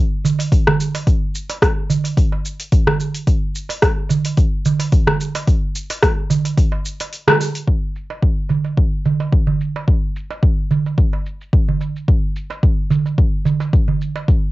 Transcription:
0.25 darbuka dum, shaker
0.39 open hi-hat, darbuka ka, darbuka tek, shaker
0.52 kick, open hi-hat, shaker
0.67 cross-stick, darbuka dum
0.81 shaker
0.95 open hi-hat, darbuka tek, shaker
1.07 kick, open hi-hat, shaker
1.35 shaker
1.50 open hi-hat, darbuka ka, darbuka tek, shaker
1.62 kick, cross-stick, open hi-hat, shaker
1.90 darbuka ka, darbuka dum, shaker
2.04 open hi-hat, darbuka ka, shaker
2.17 kick, open hi-hat, shaker
2.32 darbuka tek
2.45 shaker
2.60 open hi-hat, shaker
2.72 kick, open hi-hat, shaker
2.87 cross-stick, darbuka dum
3.00 shaker
3.15 open hi-hat, shaker
3.27 kick, open hi-hat, shaker
3.55 shaker
3.69 open hi-hat, darbuka ka, darbuka tek, shaker
3.82 kick, cross-stick, open hi-hat, shaker
4.09 darbuka ka, darbuka dum, shaker
4.25 open hi-hat, darbuka ka, shaker
4.37 kick, open hi-hat, shaker
4.65 darbuka dum, shaker
4.80 open hi-hat, darbuka ka, darbuka tek, shaker
4.92 kick, open hi-hat, shaker
5.07 cross-stick, darbuka dum
5.21 shaker
5.35 open hi-hat, darbuka tek, shaker
5.47 kick, open hi-hat, shaker
5.75 shaker
5.90 open hi-hat, darbuka ka, darbuka tek, shaker
6.02 kick, cross-stick, open hi-hat, shaker
6.30 darbuka ka, darbuka dum, shaker
6.45 open hi-hat, darbuka ka, shaker
6.57 kick, open hi-hat, shaker
6.72 darbuka tek
6.85 shaker
7.00 open hi-hat, darbuka tek, shaker
7.13 open hi-hat, shaker
7.27 cross-stick, darbuka dum
7.40 darbuka tek, shaker
7.55 open hi-hat, shaker
7.67 kick, shaker
7.96 shaker
8.10 darbuka ka, darbuka tek, shaker
8.22 kick
8.49 darbuka ka, darbuka dum, shaker
8.65 darbuka ka, shaker
8.78 kick, shaker
9.06 darbuka dum, shaker
9.20 darbuka ka, darbuka tek, shaker
9.33 kick, shaker
9.47 darbuka dum
9.61 shaker
9.76 darbuka tek, shaker
9.88 kick, shaker
10.16 shaker
10.31 darbuka ka, darbuka tek, shaker
10.43 kick, shaker
10.71 darbuka ka, darbuka dum, shaker
10.86 darbuka ka, shaker
10.98 kick, shaker
11.13 darbuka tek
11.26 shaker
11.41 shaker
11.53 kick, shaker
11.68 darbuka dum
11.81 darbuka tek, shaker
11.96 shaker
12.08 kick, shaker
12.36 shaker
12.50 darbuka ka, darbuka tek, shaker
12.63 kick, shaker
12.90 darbuka ka, darbuka dum, shaker
13.06 darbuka ka, shaker
13.18 kick, shaker
13.45 darbuka dum, shaker
13.60 darbuka ka, darbuka tek, shaker
13.73 kick, shaker
13.88 darbuka dum
14.01 shaker
14.16 darbuka tek, shaker
14.28 kick, shaker

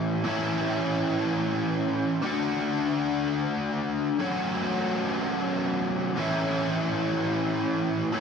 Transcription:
Already playing: A2 E3 A3 C#4 E4
0.24 A2 E3 A3 C#4 E4
2.22 D3 A3 D4 F#4
4.19 F#3 A3 C#4 F#4
6.16 A2 E3 A3 C#4 E4
8.12 A2 E3 A3 C#4 E4

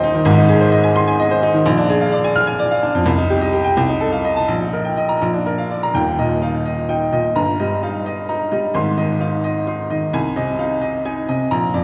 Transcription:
Already playing: D#1 D#2 D#4 G4 C5 D#5 G5 C6
0.04 D#4
0.15 D#3
0.25 G#1 G#2
0.38 D#4
0.49 G#4
0.61 C5
0.72 D#5
0.84 G#5
0.96 C6
1.08 G#5
1.20 D#5
1.31 C5
1.43 D#4
1.54 D#3
1.66 A#1
1.78 D4
1.89 G#4
2.01 F5
2.12 D5
2.24 G#5
2.36 F6
2.47 G#5
2.59 D5
2.71 F5
2.83 D4
2.95 F2
3.06 C2
3.18 D#4
3.30 G4
3.41 D#5
3.53 G4
3.64 G5
3.77 C2
3.89 D#4
4.01 A4
4.12 F5
4.25 D#5
4.36 A5
4.48 A#1
4.60 D#4
4.73 A#4
4.85 G5
4.97 D#5
5.09 A#5
5.22 A#1
5.33 D4
5.46 A#4
5.58 F5
5.71 D5
5.83 A#5
5.94 D#1 D#2 G5
6.19 A#2 D#5
6.42 D#4 F5
6.65 D#5
6.89 D#4 G5
7.13 A#2 D#5
7.35 G1 G2 A#5
7.60 G3 D#5
7.83 D#4 F5
8.06 D#5
8.29 D#4 A#5
8.52 G3 D#5
8.74 G#1 G#2 C6
8.98 D#3 D#5
9.20 D#4 F5
9.44 D#5
9.67 D#4 C6
9.90 D#3 D#5
10.13 C2 G#5
10.36 C3 D#5
10.59 D#4 F5
10.82 D#5
11.05 D#4 G#5
11.29 C3 D#5
11.51 A#1 A#5
11.74 F2 D5

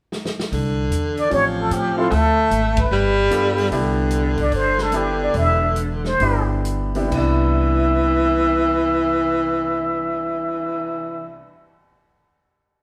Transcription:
0.12 snare
0.25 snare
0.40 snare
0.52 C2 D3, kick, open hi-hat
0.90 E2, closed hi-hat
1.17 D5, open hi-hat
1.30 A1 F3 C4 C#4 F4 G4 C#5, kick, open hi-hat
1.60 A4
1.71 A2 G4, closed hi-hat
1.97 C4 E4 F4 A4
2.10 D2 A3 A4, kick, open hi-hat
2.51 G#1, closed hi-hat
2.77 B4, kick, ride
2.91 G1 G3
3.30 G2 B3 D4 F4 A4, closed hi-hat
3.58 open hi-hat
3.71 C2 D3 B3 D4 E4 G4, kick, open hi-hat
4.11 closed hi-hat
4.38 kick, open hi-hat
4.42 D5
4.52 G1 C5, kick, open hi-hat
4.78 A4, snare
4.92 B3 D4 E4 G4, closed hi-hat
4.96 G4
5.23 D5
5.34 E1 E5, kick, open hi-hat
5.76 closed hi-hat
6.04 C5, snare
6.20 G1 B3 D4 E4 G4, kick, open hi-hat
6.65 closed hi-hat
6.95 C3 B3 D4 E4 G4, open hi-hat
7.05 C3 G3
7.11 C2 E3 B3 D4 E5, kick, crash
7.17 E4
7.43 cymbal swell

